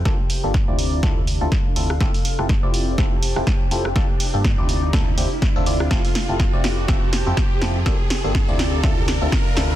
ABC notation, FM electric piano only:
X:1
M:4/4
L:1/16
Q:"Swing 16ths" 1/4=123
K:F
V:1 name="FM electric piano"
[B,DFGA] z2 [B,DFGA] z [CDEFd]3 [CDEFA] z2 [CDEFA] z2 [CDEFA] z | [CEFGA] z2 [CEFGA] z [CEFGd]3 [CEFGA] z2 [CEFGA] z2 [CEFGA] z | [B,DFGA] z2 [B,DFGA] z [CDEFd]3 [CDEFA] z [CDEFG] z2 [CDEFA] [CDEFd]2 | [CEFGA] z2 [CEFGA] z [CEFGd]3 [CEFGA] z2 [CEFGA] z2 [CEFGA] z |
[B,DFGA] z2 [B,DFGA] z [CDEFd]3 [CDEFA] z2 [CDEFA] z2 [CDEFA] z |]